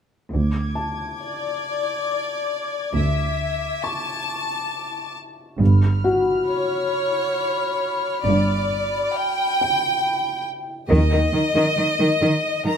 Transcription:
0.31 D2 D6 G#6
0.75 A5
1.20 D5
2.95 D2 E5
3.84 A5 C#6
5.59 G1 G2 B5 F6
6.04 F#4 F#5
6.47 C#5
8.24 G1 G2 D5
9.14 G5
9.61 G5
10.89 D#2 D#3 D#5
11.12 D#3
11.33 D#3
11.55 D#3
11.78 D#3
12.00 D#3
12.22 D#3
12.66 D#3 A#5

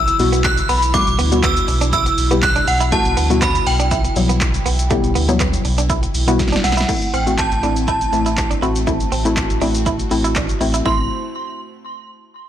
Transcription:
Already playing: B1 B2 E3 E4 E6
0.08 muted clean electric guitar stroke, closed hi-hat, shaker
0.19 B1 B2 G3 B3 E4 F#4, open hi-hat, shaker
0.33 B3, closed hi-hat, shaker
0.44 F#6, kick, clap, closed hi-hat, shaker
0.58 closed hi-hat, shaker
0.69 B1 B3 B5, open hi-hat, shaker
0.82 closed hi-hat, shaker
0.94 B2 G3 A3 B3 E4 F#4 D6, kick, closed hi-hat, shaker
1.07 B1, closed hi-hat, shaker
1.19 D2 B3, open hi-hat, shaker
1.32 B2 G3 B3 E4 F#4, muted clean electric guitar stroke, closed hi-hat, shaker
1.43 B3 E6, kick, clap, closed hi-hat, shaker
1.57 closed hi-hat, shaker
1.68 B1, muted clean electric guitar stroke, open hi-hat, shaker
1.81 D4, closed hi-hat, shaker
1.93 E4 E6, kick, closed hi-hat, shaker
2.06 muted clean electric guitar stroke, closed hi-hat, shaker
2.18 B1, open hi-hat, shaker
2.31 B2 G3 B3 E4 G4, closed hi-hat, shaker
2.42 F#6, kick, clap, closed hi-hat, shaker
2.56 D4, closed hi-hat, shaker
2.67 B1 F#5, muted clean electric guitar stroke, open hi-hat, shaker
2.80 E4, closed hi-hat, shaker
2.92 B2 G3 A3 B3 E4 F#4 A5, kick, closed hi-hat, shaker
3.05 B1, closed hi-hat, shaker
3.17 D2 B3, open hi-hat, shaker
3.30 B2 G3 B3 E4 F#4, muted clean electric guitar stroke, closed hi-hat, shaker
3.42 B3 B5, kick, clap, closed hi-hat, shaker
3.55 closed hi-hat, shaker
3.66 B1 G5, muted clean electric guitar stroke, open hi-hat, shaker
3.80 D4, closed hi-hat, shaker
3.91 E4, kick, closed hi-hat, shaker
4.05 muted clean electric guitar stroke, closed hi-hat, shaker
4.16 B1 B2 F#3 G3 B3 E4, open hi-hat, shaker
4.29 B3, closed hi-hat, shaker
4.41 kick, clap, closed hi-hat, shaker
4.54 closed hi-hat, shaker
4.66 B1 B3, open hi-hat, shaker
4.79 closed hi-hat, shaker
4.90 B2 G3 A3 B3 E4 G4, kick, closed hi-hat, shaker
5.04 B1, closed hi-hat, shaker
5.15 D2 B3, open hi-hat, shaker
5.28 B2 F#3 G3 B3 E4, muted clean electric guitar stroke, closed hi-hat, shaker
5.40 B3, kick, clap, closed hi-hat, shaker
5.54 closed hi-hat, shaker
5.65 B1, muted clean electric guitar stroke, open hi-hat, shaker
5.78 D4, closed hi-hat, shaker
5.90 E4, kick, closed hi-hat, shaker
6.03 muted clean electric guitar stroke, closed hi-hat, shaker
6.15 B1, open hi-hat, shaker
6.27 B2 G3 B3 E4 F#4, closed hi-hat, shaker
6.39 kick, snare, closed hi-hat, shaker
6.48 snare
6.52 D4, snare, closed hi-hat, shaker
6.64 B1 F#5, muted clean electric guitar stroke, snare, open hi-hat, shaker
6.72 snare
6.77 E4, snare, closed hi-hat, shaker
6.89 A3 C4 E4, kick, closed hi-hat, crash, shaker
7.02 closed hi-hat, shaker
7.14 A1 C4 G5, shaker
7.27 A3 C4 F#4, muted clean electric guitar stroke, closed hi-hat, shaker
7.38 A5, kick, clap, closed hi-hat, shaker
7.51 A1, closed hi-hat, shaker
7.63 A1 A3 C4 D4 E4, shaker
7.76 closed hi-hat, shaker
7.88 E4 A5, kick, closed hi-hat, shaker
8.01 closed hi-hat, shaker
8.13 A1 A3 C4 E4, muted clean electric guitar stroke, shaker
8.26 E4, closed hi-hat, shaker
8.37 muted clean electric guitar stroke, kick, clap, closed hi-hat, shaker
8.51 D4, closed hi-hat, shaker
8.62 A1 A3 C4 E4 F#4, shaker
8.76 closed hi-hat, shaker
8.87 A3 C4 E4 F#4, kick, closed hi-hat, shaker
9.00 closed hi-hat, shaker
9.12 A1 C4, open hi-hat, shaker
9.25 A3 C4 E4, muted clean electric guitar stroke, closed hi-hat, shaker
9.37 kick, clap, closed hi-hat, shaker
9.50 A1, closed hi-hat, shaker
9.61 A1 A3 C4 D4 E4, open hi-hat, shaker
9.75 closed hi-hat, shaker
9.86 E4, kick, closed hi-hat, shaker
9.99 closed hi-hat, shaker
10.11 A1 A3 C4 E4, muted clean electric guitar stroke, open hi-hat, shaker
10.24 E4, closed hi-hat, shaker
10.36 D4, kick, clap, closed hi-hat, shaker
10.49 closed hi-hat, shaker
10.61 A1 A3 C4 E4, muted clean electric guitar stroke, open hi-hat, shaker
10.74 E4, closed hi-hat, shaker
10.86 A1 A3 C4 E4 C5 C6, kick

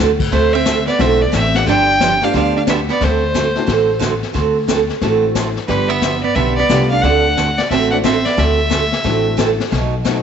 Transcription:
0.00 D2
0.20 kick, crash
0.32 D2 D3 A3 C4 F#4 A4 C5, brush sweep, kick, snare
0.53 C4 E5
0.65 D3 A3 C4 F#4 A4, kick, snare, hi-hat pedal
0.87 B3 D5, snare
0.99 B1 D3 A3 C4 D4 E4 F#4 A4 E5, brush sweep, kick, snare
1.22 B3 D5
1.32 A1 D3 A3 C4 F#4 A4 E5, kick, snare, hi-hat pedal
1.37 C4
1.54 A3 B3 D4 F4 G4 F#5, snare
1.58 D4
1.66 G1 D3 F3 B3 D4 G4 G5, brush sweep, kick, snare
2.00 D3 F3 B3 D4 G4, kick, snare, hi-hat pedal
2.21 A3 B3 D4 F4 G4 F5, snare
2.33 D2 D3 F3 B3 D4 G4 F5, brush sweep, kick, snare
2.57 D4 F5
2.67 D3 F3 B3 D4 G4 E5, kick, snare, hi-hat pedal
2.88 B3 D5, snare
3.01 D2 D3 A3 C4 F#4 A4 C5, brush sweep, kick, snare
3.34 D3 A3 C4 F#4 A4, kick, snare, hi-hat pedal
3.55 A3 C4 D4 E4 F#4, snare
3.67 A1 D3 A3 C4 F#4 A4, brush sweep, kick, snare
3.99 D3 A3 C4 F#4 A4, kick, snare, hi-hat pedal
4.23 snare
4.33 D2 D3 A3 C4 F#4 A4, brush sweep, kick, snare
4.68 D3 A3 C4 F#4 A4, kick, snare, hi-hat pedal
4.89 snare
5.01 A1 D3 A3 C4 D4 E4 F#4 A4, brush sweep, kick, snare
5.35 D3 A3 C4 F#4 A4, kick, snare, hi-hat pedal
5.56 snare
5.67 G1 D3 F3 G3 B3 D4 G4 B4, brush sweep, kick, snare
5.89 B3 E5
6.02 D3 F3 B3 D4 G4, kick, snare, hi-hat pedal
6.23 B3 D5
6.35 B1 D3 F3 B3 D4 G4 E5, brush sweep, kick, snare
6.56 B3 D5
6.69 C2 D3 F3 A3 B3 D4 F4 G4, kick, snare, hi-hat pedal
6.90 D4 F5
7.02 D2 D3 A3 C4 D4 F#4 A4 F#5, brush sweep, kick, snare
7.37 D3 A3 C4 F#4 A4, kick, snare, hi-hat pedal
7.58 B3 D5, snare
7.70 A1 D3 A3 C4 F#4 A4 E5, brush sweep, kick, snare
7.91 A3 C4 D4 E4 F#4 F#5
8.03 D3 A3 C4 F#4 A4 E5, kick, snare, hi-hat pedal
8.25 B3 D5, snare
8.37 D2 D3 A3 C4 F#4 A4 E5, brush sweep, kick, snare
8.70 D3 A3 C4 F#4 A4, kick, snare, hi-hat pedal
8.92 snare
9.04 A1 D3 A3 C4 D4 E4 F#4 A4, brush sweep, kick, snare
9.37 D3 A3 C4 F#4 A4, kick, snare, hi-hat pedal
9.60 snare
9.71 B1 B2 F#3 A3 D#4 F#4, brush sweep, kick, snare
10.04 B2 F#3 A3 B3 C4 D#4 F#4, kick, snare, hi-hat pedal

